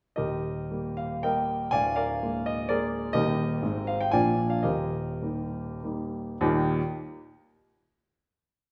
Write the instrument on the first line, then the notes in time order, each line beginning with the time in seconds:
grand piano
0.16 D#1 D#2 G4 A#4 D#5
0.71 G3 A#3
0.97 F5
1.23 G3 A#3 A#4 D#5 G5
1.71 D1 D2 D5 F5 G#5
1.96 A#4 D5 F5
2.23 G#3 A#3
2.46 D#5
2.69 G#3 A#3 G#4 A#4 D5
3.13 D#1 D#2 G3 A#3 D#4 G4 A#4 D#5
3.62 G#1 G#2 G#3 C4 D#4
3.87 F5
4.01 G5
4.11 A#1 A#2 F3 A#3 D4 D5 F5 G#5
4.50 F5
4.63 D#1 D#2 G4 A#4 D#5
5.22 G3 A#3 D#4
5.83 G3 A#3 D#4
6.41 D#2 A#2 G3 A#3 D#4 G4